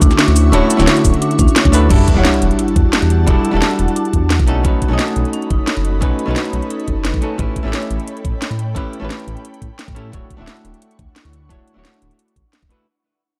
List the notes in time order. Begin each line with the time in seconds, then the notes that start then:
Already playing: D3 A3 C#4 E4 F#4 E5 C#6
0.02 D2 D4, kick, closed hi-hat, cabasa
0.11 snare, cabasa
0.19 snare, closed hi-hat
0.28 D2, closed hi-hat
0.36 E4, open hi-hat, cabasa
0.52 D1 A3 C#4 D4 E4 F#4 C#5, closed hi-hat
0.70 closed hi-hat, cabasa
0.77 D1 D3 A3 E4 F#4, snare, cabasa
0.82 C#5
0.87 snare, closed hi-hat
0.97 closed hi-hat, cabasa
1.05 D1, kick, open hi-hat, cabasa
1.14 closed hi-hat
1.22 D4, closed hi-hat
1.31 closed hi-hat
1.39 D2 C#4, kick, closed hi-hat, cabasa
1.48 cabasa
1.56 C#5, snare, closed hi-hat
1.65 D2, kick, snare, closed hi-hat
1.72 A3 D4 E4 F#4 A4 B4, open hi-hat, cabasa
1.89 E1 G3 D4 E4 F#4 A4 F#5 A5, kick, closed hi-hat, crash, sub drop
2.08 kick, closed hi-hat
2.14 E1 G3 D4 E4 F#5
2.19 C#5
2.25 snare, closed hi-hat
2.34 closed hi-hat
2.42 E1, closed hi-hat
2.51 closed hi-hat
2.59 E4, closed hi-hat
2.68 closed hi-hat
2.76 E2 F#4, kick, closed hi-hat
2.93 G4, snare, closed hi-hat
3.02 E2, closed hi-hat
3.10 closed hi-hat
3.27 E1 G3 D4 E4 F#4 A4, kick, closed hi-hat
3.45 E4, closed hi-hat
3.51 E1 G3 D4 E4 F#4
3.56 A4
3.62 snare, closed hi-hat
3.71 closed hi-hat
3.79 E1 F#4, closed hi-hat
3.88 closed hi-hat
3.96 D4, closed hi-hat
4.05 closed hi-hat
4.13 E2, kick, closed hi-hat
4.30 snare, closed hi-hat
4.39 B1, kick, closed hi-hat
4.46 A3 C#4 D#4 F#4 A4 C#5 D#5 B5, closed hi-hat
4.63 B1 A3 C#4 D#4 F#4 B4, kick, closed hi-hat
4.82 F#4, kick, closed hi-hat
4.88 B1 A3 C#4 D#4 F#4
4.93 D#5
4.99 A4, snare, closed hi-hat
5.08 closed hi-hat
5.16 B1, closed hi-hat
5.25 closed hi-hat
5.33 C#4, closed hi-hat
5.42 closed hi-hat
5.50 F#1 D#4, kick, closed hi-hat
5.67 snare, closed hi-hat
5.77 F#1, closed hi-hat
5.85 F#4, closed hi-hat
6.01 B1 A3 C#4 D#4 F#4 B4, kick, closed hi-hat
6.19 closed hi-hat
6.26 B1 A3 C#4 D#4 F#4
6.31 B4
6.36 snare, closed hi-hat
6.45 closed hi-hat
6.53 B1, closed hi-hat
6.62 closed hi-hat
6.70 D#4, closed hi-hat
6.80 closed hi-hat
6.88 F#1 A4, kick, closed hi-hat
7.05 B4, snare, closed hi-hat
7.14 B1, kick, closed hi-hat
7.21 A3 C#4 D#4 F#4 A4, closed hi-hat
7.38 A1 A3 C#4 E4 G4 B4 G5 B5, kick, closed hi-hat
7.56 kick, closed hi-hat
7.63 A1 A3 C#4 E4 G4
7.68 E5
7.73 snare, closed hi-hat
7.82 closed hi-hat
7.90 A1, closed hi-hat
8.00 closed hi-hat
8.07 closed hi-hat
8.17 closed hi-hat
8.25 A2, kick, closed hi-hat
8.42 snare, closed hi-hat
8.51 A2, closed hi-hat
8.59 closed hi-hat
8.75 A1 A3 C#4 E4 G4 B4, kick, closed hi-hat
8.93 closed hi-hat
9.00 A1 A3 C#4 E4 G4
9.05 B4
9.10 snare, closed hi-hat
9.20 closed hi-hat
9.28 A1, closed hi-hat
9.37 closed hi-hat
9.45 closed hi-hat
9.54 closed hi-hat
9.62 A2, kick, closed hi-hat
9.79 snare, closed hi-hat
9.88 A2, kick, closed hi-hat
9.95 A3 C#4 E4 G4 A4, closed hi-hat
10.12 D1 A3 D4 E4 F#4 C#5 F#5 C#6, kick, closed hi-hat
10.30 kick, closed hi-hat
10.37 D1 A3 D4 E4 F#4
10.42 E5
10.48 snare, closed hi-hat
10.57 closed hi-hat
10.65 D1, closed hi-hat
10.74 closed hi-hat
10.82 closed hi-hat
10.91 closed hi-hat
10.99 D2, kick, closed hi-hat
11.16 snare, closed hi-hat
11.25 D2, closed hi-hat
11.33 closed hi-hat
11.49 D1 A3 D4 E4 F#4 C#5, kick, closed hi-hat
11.68 closed hi-hat
11.74 D1 A3 D4 E4 F#4
11.79 C#5
11.85 snare, closed hi-hat
11.94 closed hi-hat
12.02 D1, closed hi-hat
12.11 closed hi-hat
12.19 closed hi-hat
12.28 closed hi-hat
12.36 A1, kick, closed hi-hat
12.53 snare, closed hi-hat
12.62 D1, kick, closed hi-hat
12.69 A3 D4 E4 F#4 B4, closed hi-hat